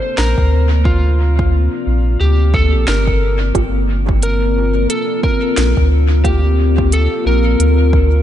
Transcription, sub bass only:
0, 0, Header, 1, 2, 480
1, 0, Start_track
1, 0, Key_signature, -2, "minor"
1, 0, Tempo, 674157
1, 608, Time_signature, 4, 2, 24, 8
1, 5856, End_track
2, 0, Start_track
2, 0, Title_t, "Sub bass"
2, 0, Program_c, 0, 38
2, 127, Note_on_c, 0, 34, 84
2, 253, Note_off_c, 0, 34, 0
2, 268, Note_on_c, 0, 38, 89
2, 1202, Note_off_c, 0, 38, 0
2, 1328, Note_on_c, 0, 34, 82
2, 1545, Note_off_c, 0, 34, 0
2, 1568, Note_on_c, 0, 38, 97
2, 1951, Note_on_c, 0, 34, 78
2, 1962, Note_off_c, 0, 38, 0
2, 2037, Note_off_c, 0, 34, 0
2, 2047, Note_on_c, 0, 31, 89
2, 2509, Note_off_c, 0, 31, 0
2, 2525, Note_on_c, 0, 31, 92
2, 3468, Note_off_c, 0, 31, 0
2, 3967, Note_on_c, 0, 34, 85
2, 4093, Note_off_c, 0, 34, 0
2, 4108, Note_on_c, 0, 38, 88
2, 5042, Note_off_c, 0, 38, 0
2, 5167, Note_on_c, 0, 34, 84
2, 5384, Note_off_c, 0, 34, 0
2, 5406, Note_on_c, 0, 38, 98
2, 5856, Note_off_c, 0, 38, 0
2, 5856, End_track
0, 0, End_of_file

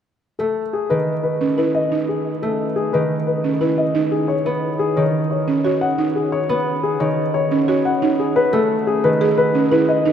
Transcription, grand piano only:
0, 0, Header, 1, 2, 480
1, 0, Start_track
1, 0, Tempo, 338983
1, 314, Time_signature, 6, 2, 24, 8
1, 14336, End_track
2, 0, Start_track
2, 0, Title_t, "Grand piano"
2, 0, Program_c, 0, 0
2, 550, Note_on_c, 0, 69, 57
2, 865, Note_off_c, 0, 69, 0
2, 1038, Note_on_c, 0, 68, 64
2, 1270, Note_on_c, 0, 71, 65
2, 1348, Note_off_c, 0, 68, 0
2, 1585, Note_off_c, 0, 71, 0
2, 1748, Note_on_c, 0, 71, 59
2, 2065, Note_off_c, 0, 71, 0
2, 2229, Note_on_c, 0, 71, 59
2, 2473, Note_on_c, 0, 75, 68
2, 2545, Note_off_c, 0, 71, 0
2, 2786, Note_off_c, 0, 75, 0
2, 2954, Note_on_c, 0, 68, 50
2, 3267, Note_off_c, 0, 68, 0
2, 3432, Note_on_c, 0, 69, 52
2, 3746, Note_off_c, 0, 69, 0
2, 3907, Note_on_c, 0, 68, 67
2, 4148, Note_on_c, 0, 71, 60
2, 4224, Note_off_c, 0, 68, 0
2, 4465, Note_off_c, 0, 71, 0
2, 4631, Note_on_c, 0, 71, 56
2, 4946, Note_off_c, 0, 71, 0
2, 5108, Note_on_c, 0, 71, 54
2, 5351, Note_on_c, 0, 75, 65
2, 5424, Note_off_c, 0, 71, 0
2, 5666, Note_off_c, 0, 75, 0
2, 5827, Note_on_c, 0, 68, 59
2, 6062, Note_on_c, 0, 73, 63
2, 6144, Note_off_c, 0, 68, 0
2, 6306, Note_on_c, 0, 71, 50
2, 6382, Note_off_c, 0, 73, 0
2, 6624, Note_off_c, 0, 71, 0
2, 6787, Note_on_c, 0, 68, 71
2, 7031, Note_on_c, 0, 73, 55
2, 7104, Note_off_c, 0, 68, 0
2, 7346, Note_off_c, 0, 73, 0
2, 7515, Note_on_c, 0, 73, 54
2, 7827, Note_off_c, 0, 73, 0
2, 7992, Note_on_c, 0, 73, 57
2, 8231, Note_on_c, 0, 78, 73
2, 8306, Note_off_c, 0, 73, 0
2, 8546, Note_off_c, 0, 78, 0
2, 8714, Note_on_c, 0, 68, 54
2, 8954, Note_on_c, 0, 73, 70
2, 9027, Note_off_c, 0, 68, 0
2, 9200, Note_on_c, 0, 71, 53
2, 9266, Note_off_c, 0, 73, 0
2, 9509, Note_off_c, 0, 71, 0
2, 9677, Note_on_c, 0, 68, 67
2, 9913, Note_on_c, 0, 73, 68
2, 9988, Note_off_c, 0, 68, 0
2, 10226, Note_off_c, 0, 73, 0
2, 10395, Note_on_c, 0, 73, 68
2, 10707, Note_off_c, 0, 73, 0
2, 10875, Note_on_c, 0, 73, 62
2, 11118, Note_on_c, 0, 78, 71
2, 11187, Note_off_c, 0, 73, 0
2, 11428, Note_off_c, 0, 78, 0
2, 11602, Note_on_c, 0, 68, 58
2, 11837, Note_on_c, 0, 71, 79
2, 11909, Note_off_c, 0, 68, 0
2, 12079, Note_on_c, 0, 69, 67
2, 12148, Note_off_c, 0, 71, 0
2, 12388, Note_off_c, 0, 69, 0
2, 12560, Note_on_c, 0, 68, 75
2, 12801, Note_on_c, 0, 71, 70
2, 12869, Note_off_c, 0, 68, 0
2, 13109, Note_off_c, 0, 71, 0
2, 13278, Note_on_c, 0, 71, 77
2, 13588, Note_off_c, 0, 71, 0
2, 13755, Note_on_c, 0, 71, 71
2, 13998, Note_on_c, 0, 75, 72
2, 14067, Note_off_c, 0, 71, 0
2, 14308, Note_off_c, 0, 75, 0
2, 14336, End_track
0, 0, End_of_file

